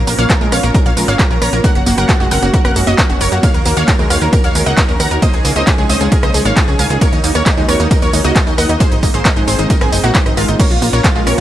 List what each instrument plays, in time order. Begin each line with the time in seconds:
Already playing: supersaw synth A#3 C#4 F4 C#5
0.07 analog synth bass A#1, synth arpeggio sound A#3, synth pluck A#4, digital synth lead A#5, open hi-hat, tambourine
0.18 analog synth bass A#1, synth arpeggio sound A#3, synth pluck C#5 F5, digital synth lead F6, closed hi-hat, tambourine
0.30 synth arpeggio sound F4, synth pluck A#4, digital synth lead A#5, kick, clap, closed hi-hat, tambourine
0.41 analog synth bass A#1, synth arpeggio sound G#3, synth pluck A#4, digital synth lead A#5, tambourine
0.52 analog synth bass A#1, synth arpeggio sound C4, synth pluck C#5 F5, digital synth lead F6, cross-stick, open hi-hat, tambourine
0.63 analog synth bass A#1, synth arpeggio sound A#3, synth pluck A#4, digital synth lead A#5, closed hi-hat, tambourine
0.74 synth arpeggio sound A#4, synth pluck A#4, digital synth lead A#5, kick, closed hi-hat, tambourine
0.86 analog synth bass A#1, synth arpeggio sound A#3, synth pluck C#5 F5, digital synth lead F6, closed hi-hat, tambourine
0.97 analog synth bass A#1, synth arpeggio sound G#3, synth pluck A#4, digital synth lead A#5, open hi-hat, tambourine
1.08 analog synth bass G#1, synth arpeggio sound A#3, synth pluck C#5 F5, digital synth lead F6, closed hi-hat, tambourine
1.19 synth arpeggio sound F4, synth pluck A#4, digital synth lead A#5, kick, clap, closed hi-hat, tambourine
1.30 analog synth bass A#1, synth arpeggio sound C#4, synth pluck A#4, digital synth lead A#5, tambourine
1.42 analog synth bass A#1, synth arpeggio sound A#4, synth pluck C#5 A#5, digital synth lead A#6, cross-stick, open hi-hat, tambourine
1.53 analog synth bass A#1, synth arpeggio sound A#3, synth pluck A#4, digital synth lead A#5, closed hi-hat, tambourine
1.64 synth arpeggio sound A#3, supersaw synth F#4 C#5, synth pluck A#4 F#5, digital synth lead F#6, kick, closed hi-hat, tambourine
1.75 analog synth bass F#1, synth pluck F#4, digital synth lead F#5, closed hi-hat, tambourine
1.86 analog synth bass F#1, synth arpeggio sound A#3, synth pluck F#4, digital synth lead F#5, open hi-hat, tambourine
1.98 analog synth bass F#1, synth arpeggio sound A#3, synth pluck A#4 F#5, digital synth lead F#6, closed hi-hat, tambourine
2.09 synth arpeggio sound F4, synth pluck F#4, digital synth lead F#5, kick, clap, closed hi-hat, tambourine
2.20 analog synth bass F#1, synth arpeggio sound G#3, synth pluck F#4, digital synth lead F#5, tambourine
2.31 analog synth bass F#1, synth arpeggio sound C4, synth pluck A#4 F#5, digital synth lead F#6, open hi-hat, tambourine
2.42 analog synth bass F#1, synth arpeggio sound A#3, synth pluck F#4, digital synth lead F#5, closed hi-hat, tambourine
2.54 synth pluck F#4, synth arpeggio sound A#4, digital synth lead F#5, kick, closed hi-hat, tambourine
2.65 analog synth bass F#1, synth arpeggio sound A#3, synth pluck A#4 F#5, digital synth lead F#6, cross-stick, closed hi-hat, tambourine
2.76 analog synth bass F#1, synth arpeggio sound G#3, synth pluck F#4, digital synth lead F#5, open hi-hat, tambourine
2.87 analog synth bass F#1, synth arpeggio sound A#3, synth pluck F#4 D#5, digital synth lead D#6, closed hi-hat, tambourine
2.98 synth arpeggio sound F4, synth pluck F#4, digital synth lead F#5, kick, clap, closed hi-hat, tambourine
3.10 analog synth bass F#1, synth arpeggio sound C#4, synth pluck F#4, digital synth lead F#5, closed hi-hat, tambourine
3.21 analog synth bass F#1, synth pluck A#4 C#5, synth arpeggio sound A#4, digital synth lead C#6, open hi-hat, tambourine
3.32 analog synth bass F#2, synth arpeggio sound A#3, synth pluck F#4, digital synth lead F#5, closed hi-hat, tambourine
3.43 synth arpeggio sound A#3, supersaw synth D#4 F#4, synth pluck C#5 F5, digital synth lead F6, kick, closed hi-hat, ride, tambourine
3.54 analog synth bass D#2, synth pluck A#4, digital synth lead A#5, closed hi-hat, tambourine
3.65 analog synth bass D#2, synth arpeggio sound A#3, synth pluck A#4, digital synth lead A#5, open hi-hat, tambourine
3.77 analog synth bass D#2, synth arpeggio sound A#3, synth pluck C#5 F5, digital synth lead F6, closed hi-hat, tambourine
3.88 synth arpeggio sound F4, synth pluck A#4, digital synth lead A#5, kick, clap, closed hi-hat, ride, tambourine
3.99 analog synth bass D#2, synth arpeggio sound G#3, synth pluck A#4, digital synth lead A#5, tambourine
4.10 analog synth bass D#2, synth arpeggio sound C4, synth pluck C#5 F5, digital synth lead F6, cross-stick, open hi-hat, tambourine
4.21 analog synth bass D#2, synth arpeggio sound A#3, synth pluck A#4, digital synth lead A#5, closed hi-hat, tambourine
4.33 synth arpeggio sound A#4, synth pluck A#4, digital synth lead A#5, kick, closed hi-hat, ride, tambourine
4.44 analog synth bass D#2, synth arpeggio sound A#3, synth pluck C#5 F5, digital synth lead F6, closed hi-hat, tambourine
4.55 analog synth bass D#2, synth arpeggio sound G#3, synth pluck A#4, digital synth lead A#5, open hi-hat, tambourine
4.66 analog synth bass C#2, synth arpeggio sound A#3, synth pluck D#5 F#5, digital synth lead F#6, closed hi-hat, tambourine
4.77 synth arpeggio sound F4, synth pluck A#4, digital synth lead A#5, kick, clap, closed hi-hat, ride, tambourine
4.89 analog synth bass D#2, synth arpeggio sound C#4, synth pluck A#4, digital synth lead A#5, tambourine
5.00 analog synth bass D#2, synth arpeggio sound A#4, synth pluck F#5 A#5, digital synth lead A#6, cross-stick, open hi-hat, tambourine
5.11 analog synth bass D#2, synth arpeggio sound A#3, synth pluck A#4, digital synth lead A#5, closed hi-hat, tambourine
5.22 supersaw synth G#3 C#4, synth arpeggio sound A#3, synth pluck C5 D#5, digital synth lead D#6, kick, closed hi-hat, ride, tambourine
5.33 analog synth bass C#2, synth pluck G#4, digital synth lead G#5, closed hi-hat, tambourine
5.45 analog synth bass C#2, synth arpeggio sound A#3, synth pluck G#4, digital synth lead G#5, open hi-hat, tambourine
5.56 analog synth bass C#2, synth arpeggio sound A#3, synth pluck C5 D#5, digital synth lead D#6, closed hi-hat, tambourine
5.67 synth arpeggio sound F4, synth pluck G#4, digital synth lead G#5, kick, clap, closed hi-hat, ride, tambourine
5.78 analog synth bass C#2, synth arpeggio sound G#3, synth pluck G#4, digital synth lead G#5, tambourine
5.89 analog synth bass C#2, synth arpeggio sound C4, synth pluck C5 D#5, digital synth lead D#6, open hi-hat, tambourine
6.01 analog synth bass C#2, synth arpeggio sound A#3, synth pluck G#4, digital synth lead G#5, closed hi-hat, tambourine
6.12 synth pluck G#4, synth arpeggio sound A#4, digital synth lead G#5, kick, closed hi-hat, ride, tambourine
6.23 analog synth bass C#2, synth arpeggio sound A#3, synth pluck C5 D#5, digital synth lead D#6, cross-stick, closed hi-hat, tambourine
6.34 analog synth bass C#2, synth arpeggio sound G#3, synth pluck G#4, digital synth lead G#5, open hi-hat, tambourine
6.45 analog synth bass G#1, synth arpeggio sound A#3, synth pluck C#5 F5, digital synth lead F6, closed hi-hat, tambourine
6.57 synth arpeggio sound F4, synth pluck G#4, digital synth lead G#5, kick, clap, closed hi-hat, ride, tambourine
6.68 analog synth bass C#2, synth arpeggio sound C#4, synth pluck G#4, digital synth lead G#5, tambourine
6.79 analog synth bass C#2, synth arpeggio sound A#4, synth pluck F5 G#5, digital synth lead G#6, open hi-hat, tambourine
6.90 analog synth bass C#2, synth arpeggio sound A#3, synth pluck G#4, digital synth lead G#5, closed hi-hat, tambourine
7.01 synth arpeggio sound A#3, supersaw synth A#3 F#4, synth pluck A#4 C#5, digital synth lead C#6, kick, closed hi-hat, ride, tambourine
7.13 analog synth bass D#2, synth pluck D#4, digital synth lead D#5, closed hi-hat, tambourine
7.24 analog synth bass D#2, synth arpeggio sound A#3, synth pluck D#4, digital synth lead D#5, open hi-hat, tambourine
7.35 analog synth bass D#2, synth arpeggio sound A#3, synth pluck A#4 C#5, digital synth lead C#6, closed hi-hat, tambourine
7.46 synth pluck D#4, synth arpeggio sound F4, digital synth lead D#5, kick, clap, closed hi-hat, ride, tambourine
7.57 analog synth bass D#2, synth arpeggio sound G#3, synth pluck D#4, digital synth lead D#5, tambourine
7.68 analog synth bass D#2, synth arpeggio sound C4, synth pluck A#4 C#5, digital synth lead C#6, cross-stick, open hi-hat, tambourine
7.80 analog synth bass D#2, synth arpeggio sound A#3, synth pluck D#4, digital synth lead D#5, closed hi-hat, tambourine
7.91 synth pluck D#4, synth arpeggio sound A#4, digital synth lead D#5, kick, closed hi-hat, ride, tambourine
8.02 analog synth bass D#2, synth arpeggio sound A#3, synth pluck A#4 C#5, digital synth lead C#6, closed hi-hat, tambourine
8.13 analog synth bass D#2, synth arpeggio sound G#3, synth pluck D#4, digital synth lead D#5, open hi-hat, tambourine
8.24 analog synth bass C#2, synth arpeggio sound A#3, synth pluck F#4 D#5, digital synth lead D#6, closed hi-hat, tambourine
8.36 synth pluck D#4, synth arpeggio sound F4, digital synth lead D#5, kick, clap, closed hi-hat, ride, tambourine
8.47 analog synth bass D#2, synth arpeggio sound C#4, synth pluck D#4, digital synth lead D#5, tambourine
8.58 analog synth bass D#2, synth arpeggio sound A#4, synth pluck D#5 F#5, digital synth lead F#6, cross-stick, open hi-hat, tambourine
8.69 analog synth bass D#2, synth arpeggio sound A#3, synth pluck D#4, digital synth lead D#5, closed hi-hat, tambourine
8.80 supersaw synth G#3 C4 C5, synth arpeggio sound A#3, synth pluck G#4 C5, digital synth lead C6, kick, closed hi-hat, ride, tambourine
8.91 analog synth bass G#1, synth pluck D#4, digital synth lead D#5, closed hi-hat, tambourine
9.03 analog synth bass G#1, synth arpeggio sound A#3, synth pluck D#4, digital synth lead D#5, kick, open hi-hat, tambourine
9.14 analog synth bass G#1, synth arpeggio sound A#3, synth pluck G#4 C5, digital synth lead C6, closed hi-hat, tambourine
9.25 synth pluck D#4, synth arpeggio sound F4, digital synth lead D#5, kick, clap, closed hi-hat, ride, tambourine
9.36 analog synth bass G#1, synth arpeggio sound G#3, synth pluck D#4, digital synth lead D#5, closed hi-hat, tambourine
9.47 analog synth bass G#1, synth arpeggio sound C4, synth pluck G#4 C5, digital synth lead C6, open hi-hat, tambourine
9.59 analog synth bass G#1, synth arpeggio sound A#3, synth pluck D#4, digital synth lead D#5, closed hi-hat, tambourine
9.70 synth pluck D#4, synth arpeggio sound A#4, digital synth lead D#5, kick, closed hi-hat, ride, tambourine
9.81 analog synth bass G#1, synth arpeggio sound A#3, synth pluck C4 G#4, digital synth lead G#5, cross-stick, closed hi-hat, tambourine
9.92 analog synth bass F#1, synth arpeggio sound G#3, synth pluck D#4, digital synth lead D#5, open hi-hat, tambourine
10.04 analog synth bass A#1, synth arpeggio sound A#3, synth pluck D#4 F#4, digital synth lead F#5, closed hi-hat, tambourine
10.15 synth pluck D#4, synth arpeggio sound F4, digital synth lead D#5, kick, clap, closed hi-hat, ride, tambourine
10.26 analog synth bass G#1, synth arpeggio sound C4, synth pluck D#4, digital synth lead D#5, cross-stick, closed hi-hat, tambourine
10.37 analog synth bass G#1, synth pluck G#3 F4, synth arpeggio sound A#4, digital synth lead F5, open hi-hat, tambourine
10.48 analog synth bass G#1, synth arpeggio sound A#3, synth pluck D#4, digital synth lead D#5, closed hi-hat, tambourine
10.59 synth arpeggio sound A#3, supersaw synth A#3 C#4 F4 C#5, synth pluck A#4 C#5, digital synth lead C#6, kick, closed hi-hat, ride, tambourine, crash
10.71 analog synth bass A#1, synth pluck F4, digital synth lead F5, closed hi-hat, tambourine
10.82 analog synth bass A#1, synth arpeggio sound A#3, synth pluck F4, digital synth lead F5, open hi-hat, tambourine
10.93 analog synth bass A#1, synth arpeggio sound A#3, synth pluck A#4 C#5, digital synth lead C#6, closed hi-hat, tambourine
11.04 synth arpeggio sound F4, synth pluck F4, digital synth lead F5, kick, clap, closed hi-hat, ride, tambourine
11.15 analog synth bass A#1, synth arpeggio sound G#3, synth pluck F4, digital synth lead F5, tambourine
11.27 analog synth bass A#1, synth arpeggio sound C4, synth pluck A#4 C#5, digital synth lead C#6, cross-stick, open hi-hat, tambourine